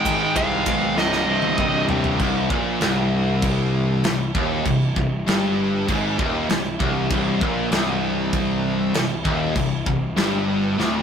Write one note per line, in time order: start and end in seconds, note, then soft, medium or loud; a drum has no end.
0.00 0.95 G#2 medium
0.00 0.96 D#3 loud
0.00 0.97 G#3 loud
0.00 0.36 G5 medium
0.05 0.34 G#1 loud
0.05 0.35 G#2 medium
0.05 0.35 D#3 loud
0.05 0.36 G#3 medium
0.05 kick medium
0.05 ride medium
0.36 0.65 C2 medium
0.36 0.66 G#2 medium
0.36 0.66 D#3 loud
0.36 0.67 G#3 loud
0.36 1.00 F5 loud
0.36 kick medium
0.36 ride loud
0.66 0.95 B1 medium
0.66 0.96 G#2 medium
0.66 0.96 D#3 medium
0.66 0.96 G#3 medium
0.66 kick medium
0.66 ride medium
0.97 1.26 C1 loud
0.97 1.26 C2 medium
0.97 1.26 G2 loud
0.97 1.27 C3 loud
0.97 1.86 D#5 medium
0.97 snare medium
1.12 snare medium
1.27 1.57 C1 medium
1.27 1.58 C2 medium
1.27 1.58 G2 loud
1.27 1.58 C3 loud
1.42 high tom medium
1.58 1.87 C1 loud
1.58 1.88 C2 loud
1.58 1.88 G2 medium
1.58 1.89 C3 loud
1.58 kick loud
1.58 mid tom loud
1.89 2.18 C2 medium
1.89 2.18 G2 medium
1.89 2.19 C3 loud
1.89 floor tom loud
2.04 floor tom medium
2.19 2.48 C1 loud
2.19 2.50 C2 loud
2.19 kick loud
2.19 crash medium
2.50 2.79 A#1 loud
2.50 2.81 A#2 loud
2.50 kick loud
2.81 4.00 C1 loud
2.81 4.03 C2 loud
2.81 snare loud
2.81 crash medium
3.42 kick loud
3.42 crash medium
4.04 4.33 C1 medium
4.04 4.29 C2 medium
4.04 snare loud
4.04 crash medium
4.35 4.63 D#1 loud
4.35 4.65 D#2 medium
4.35 kick loud
4.66 4.94 C1 medium
4.66 4.90 C2 medium
4.66 kick loud
4.66 crash medium
4.96 5.25 C1 medium
4.96 5.21 C2 medium
4.96 kick loud
5.27 5.84 G1 loud
5.27 5.87 G2 loud
5.27 snare loud
5.27 crash medium
5.89 6.17 G#1 loud
5.89 6.18 G#2 loud
5.89 kick loud
5.89 crash medium
6.19 6.47 D#1 loud
6.19 6.49 D#2 loud
6.19 kick loud
6.49 6.78 C1 medium
6.49 6.74 C2 medium
6.49 snare loud
6.49 crash medium
6.80 7.08 C1 loud
6.80 7.10 C2 medium
6.80 kick loud
7.11 7.39 C1 loud
7.11 7.41 C2 loud
7.11 kick loud
7.11 crash medium
7.41 7.70 A#1 loud
7.41 7.71 A#2 loud
7.41 kick loud
7.72 8.90 C1 loud
7.72 8.94 C2 loud
7.72 snare loud
7.72 crash medium
8.33 kick loud
8.33 crash medium
8.94 9.23 C1 medium
8.94 9.19 C2 medium
8.94 snare loud
8.94 crash medium
9.25 9.54 D#1 loud
9.25 9.55 D#2 loud
9.25 kick loud
9.55 9.84 C1 medium
9.55 9.80 C2 medium
9.55 kick loud
9.55 crash medium
9.86 10.15 C1 medium
9.86 10.11 C2 medium
9.86 kick loud
10.16 10.75 G1 medium
10.16 10.77 G2 loud
10.16 snare loud
10.16 crash medium
10.78 11.02 D1 medium
10.78 11.02 D2 loud
10.78 snare medium